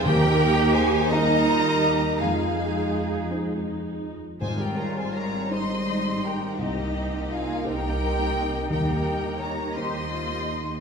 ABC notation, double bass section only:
X:1
M:6/8
L:1/8
Q:3/8=55
K:Ebmix
V:1 name="Double bass section" clef=bass
E,,6 | F,,4- F,, z | A,,,3 A,,,3 | C,,3 C,,3 |
E,,3 E,,3 |]